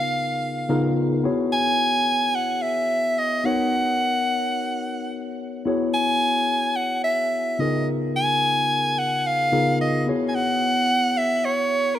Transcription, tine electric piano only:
Already playing: C#3 B3 D#4 F4 G#4 A#4
0.69 C#3 B3 D#4 F4 G#4 A#4
1.23 B3 E4 F#4 G#4 C#5
3.44 B3 D#4 F#4 A#4 C#5
5.65 B3 E4 F#4 G#4 C#5
7.59 C#3 B3 D#4 F4 G#4 A#4
9.52 C#3 B3 D#4 F4 G#4 A#4
10.06 B3 E4 F#4 G#4 C#5

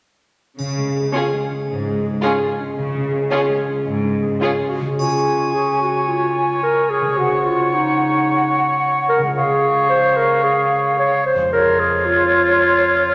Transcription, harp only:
0.59 C#3
0.78 G#3
0.96 G#4
1.15 F4
1.33 G#3
1.51 C#4
1.70 G#3
1.87 C#4
2.06 G#4
2.24 F4
2.42 G#3
2.60 C#4
2.78 C#3
2.95 G#3
3.13 G#4
3.31 F4
3.49 G#3
3.68 C#4
3.86 G#3
4.04 C#4
4.22 G#4
4.42 F4
4.60 G#3
4.80 C#3 C#4
4.85 G#3
4.90 F4
4.94 G#4
7.01 C#3
7.05 G#3
7.10 F#4
7.14 C5
9.18 C#3
9.22 G#3
9.27 F4
9.32 C#5
11.34 F2
11.38 G#3
11.43 F4
11.47 C#5

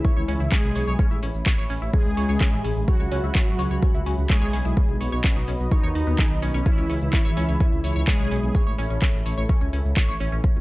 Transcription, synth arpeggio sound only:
0.05 C#5
0.17 C#5
0.28 C#4
0.40 E4
0.52 C#4
0.76 C#5
0.87 C#5
0.99 C#4
1.11 E4
1.23 C#4
1.46 C#5
1.58 C#5
1.70 C#4
1.82 E4
1.94 C#4
2.17 C#5
2.29 C#5
2.41 C#4
2.53 E4
2.64 C#4
2.88 C#5
3.00 C#5
3.12 C#4
3.24 E4
3.35 C#4
3.59 C#5
3.71 C#5
3.83 C#4
3.94 E4
4.06 C#4
4.30 C#5
4.42 C#5
4.53 C#4
4.65 E4
4.77 C#4
5.00 C#5
5.12 C#5
5.24 C#4
5.36 D#4
5.48 C#4
5.72 C#5
5.83 C#5
5.95 D#4
6.07 B3
6.19 G#4
6.42 C#4
6.54 C#4
6.66 C#4
6.78 C#4
6.90 C#4
7.13 C#5
7.25 C#5
7.37 C#4
7.49 C#4
7.60 C#4
7.84 C#5
7.96 C#5
8.08 C#4
8.20 C#4
8.31 C#4
8.55 C#5
8.67 C#5
8.79 C#4
8.91 C#4
9.02 C#4
9.26 C#5
9.38 C#5
9.50 C#4
9.61 C#4
9.73 C#4
9.97 C#5
10.09 C#5
10.20 C#4
10.32 C#4

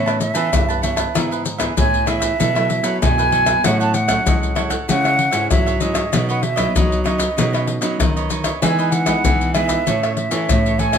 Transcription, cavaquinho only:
0.06 B4 A5
0.20 muted cavaquinho stroke
0.34 B4 A5
0.69 B4 A5
0.82 B4 C#5 A5
0.96 B4 A5
1.14 E4 G#4 B4 E5
1.31 G#4 B4 E5
1.44 muted cavaquinho stroke
1.58 G#4 B4 E5
1.76 E4 G#4 B4 E5
2.06 E4 G#4 B4 E5
2.20 G#4 B4 E5
2.38 E4 A4 B4 E5
2.55 A4 B4 E5
2.69 muted cavaquinho stroke
2.83 A4 B4 E5
3.18 A4 B4 E5
3.32 E4 A4 B4 E5
3.45 A4 B4 E5
3.64 E4 A4 C#5 F#5
3.80 A4 C#5 F#5
3.94 muted cavaquinho stroke
4.08 A4 C#5 F#5
4.25 E4 A4 C#5 F#5
4.55 E4 A4 C#5 F#5
4.70 A4 C#5 F#5
4.88 E4 G#4 C#5 E5
5.04 G#4 C#5 E5
5.17 muted cavaquinho stroke
5.31 G#4 C#5 E5
5.66 G#4 C#5 E5
5.80 E4 G#4 C#5 E5
5.94 G#4 C#5 E5
6.12 D#4 B4 C#5 D#5
6.29 B4 C#5 D#5
6.42 muted cavaquinho stroke
6.56 B4 C#5 D#5
6.75 D#4 B4 C#5 D#5
7.04 D#4 B4 C#5 D#5
7.18 B4 C#5 D#5
7.37 D#4 B4 C#5 D#5
7.53 B4 C#5 D#5
7.67 muted cavaquinho stroke
7.81 B4 C#5 D#5
8.16 B4 C#5 D#5
8.30 D#4 B4 C#5 D#5
8.44 B4 C#5 D#5
8.62 E4 G#4 B4 D#5
8.79 G#4 B4 D#5
8.93 muted cavaquinho stroke
9.06 G#4 B4 D#5
9.24 E4 G#4 B4 D#5
9.54 E4 G#4 B4 D#5
9.68 G#4 B4 D#5
9.86 E4 A4 C#5 E5
10.03 A4 C#5 E5
10.17 muted cavaquinho stroke
10.31 A4 C#5 E5
10.66 A4 C#5 E5
10.78 E4 A4 C#5 E5
10.92 A4 C#5 E5

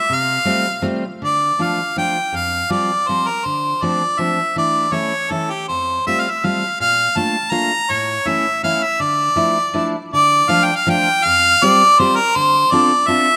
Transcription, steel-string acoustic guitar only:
0.10 C3
0.45 G3 A3 C4 F4
0.82 G3 A3 C4 F4
1.22 D3
1.59 F3 A3 D4 F4
1.96 F3 A3 D4 F4
2.32 F2
2.70 F3 G3 C4 F4
3.09 F3 G3 C4 F4
3.46 D3
3.82 F3 A3 C4 D4
4.19 F3 A3 C4 D4
4.56 E3 A3 D4 E4
4.92 E3 A3 C#4 E4
5.30 E3 A3 C#4 E4
5.69 F2
6.07 G3 A3 C4 F4
6.44 G3 A3 C4 F4
6.80 A#2
7.15 A3 A#3 D4 F4
7.51 A3 A#3 D4 F4
7.90 A2
8.25 E3 A3 C#4 E4
8.63 E3 A3 C#4 E4
9.00 D3
9.36 F3 A3 D4 E4
9.73 F3 A3 D4 E4
10.13 D3
10.49 F3 A3 D4 F4
10.87 F3 A3 D4 F4
11.26 F2
11.62 G3 C4 F4 G4
11.99 G3 C4 F4 G4
12.36 D3
12.72 C4 D4 F4 A4
13.08 C4 D4 F4 A4

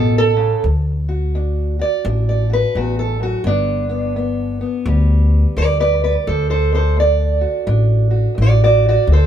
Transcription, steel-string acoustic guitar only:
Already playing: B2 C#4 A4
0.18 A4
0.36 C#3
0.64 D2
1.09 F#4
1.35 D2 D4
1.79 F#4 D5
2.05 D2 D4
2.29 D5
2.50 F#4 B4
2.76 E2 F#4
2.99 A4
3.20 F#2 F#4
3.46 D2 D3 B3 D4
3.89 B3
4.16 D2 B3
4.61 B3
4.87 D2 G3
5.57 B4 D5
5.80 B4 D5
6.04 B4 D5
6.27 D2 A4 C5
6.50 A4 C5
6.73 D4 A4 C5
6.97 D2 D5
7.41 F#4
7.67 D2 D4
8.11 F#4
8.35 D2
8.41 F#4 D5
8.64 F#4 D5
8.89 F#4 D5
9.06 D2
9.12 A4 C5

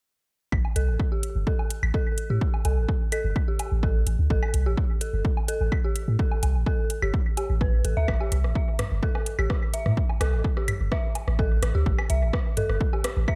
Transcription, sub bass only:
0.52 A1
0.76 C2
0.88 A1
1.35 G1
1.83 A1
2.30 A2
2.65 C2
2.77 A1
3.24 G1
3.72 A1
4.07 A1
4.19 D2
4.30 A1
4.54 C2
4.66 A1
5.13 G1
5.61 A1
6.08 A2
6.43 C2
6.55 A1
7.02 G1
7.50 A1
7.85 A1
7.97 D2
8.08 A1
8.32 C2
8.44 A1
8.92 G1
9.39 A1
9.86 A2
10.21 C2
10.33 A1
10.80 G1
11.28 A1
11.62 A1
11.75 D2
11.86 A1
12.10 C2
12.22 A1
12.69 G1
13.17 A1

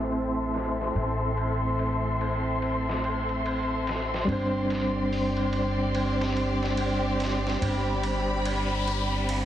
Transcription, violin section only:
Already playing: C4 A4 E5 C6
4.27 C4 G4 D5
7.61 B5

